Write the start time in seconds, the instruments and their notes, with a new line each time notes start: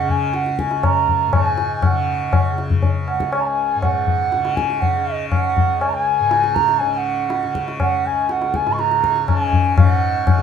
Already playing: tanpura C#2 G#2 C#3, bansuri F#5
0.03 tanpura C#3
0.09 bansuri G#5, tabla ge
0.34 bansuri F#5, tabla te
0.46 tabla te
0.59 bansuri G#5, tabla ke
0.63 tanpura C#2
0.71 tabla te
0.83 bansuri A#5, tabla na, tabla ge
1.08 tabla ge
1.27 tanpura G#2
1.33 bansuri G#5, tabla na, tabla ge
1.58 tabla te
1.76 bansuri G#5
1.82 bansuri F#5, tabla na, tabla ge
1.88 tanpura C#3
2.33 tabla na, tabla ge
2.52 tanpura C#3
2.58 tabla te
2.70 tabla ge
2.83 tabla tin, tabla ge
3.08 bansuri F#5, tabla na
3.13 tanpura C#2
3.20 tabla ke
3.31 bansuri G#5, tabla na
3.40 bansuri A#5
3.46 bansuri G#5
3.75 tanpura G#2
3.81 bansuri F#5, tabla na, tabla ge
4.07 tabla ge
4.32 tabla te
4.37 tanpura C#3
4.45 tabla te
4.56 bansuri G#5, tabla ke
4.70 tabla te
4.80 bansuri F#5, tabla tin, tabla ge
4.97 tanpura C#3
5.14 bansuri D#5
5.29 bansuri F#5, tabla na, tabla ge
5.57 tanpura C#2, tabla ge
5.80 bansuri G#5, tabla na
5.88 bansuri A#5
5.93 bansuri G#5
6.20 tanpura G#2
6.31 tabla te
6.44 tabla te
6.54 bansuri A#5, tabla ke
6.68 tabla te
6.79 tanpura C#3, bansuri G#5, tabla tin
6.92 bansuri G#5
6.96 bansuri F#5
7.30 tabla te
7.43 tanpura C#3, tabla te
7.55 tabla ke
7.68 tabla te
7.80 bansuri F#5, tabla na, tabla ge
8.06 tanpura C#2, bansuri G#5
8.29 bansuri F#5, tabla te
8.42 tabla te
8.54 bansuri G#5, tabla ke
8.66 tanpura G#2, tabla te
8.72 bansuri C#6
8.79 bansuri A#5, tabla te
8.91 tabla te
9.04 tabla ke
9.16 tabla te
9.28 tanpura C#3, bansuri A5, tabla na, tabla ge
9.43 bansuri G#5
9.53 tabla ge
9.77 tanpura G#2, bansuri F5, tabla na, tabla ge
9.89 bansuri F#5
10.27 tabla na, tabla ge
10.37 tanpura C#3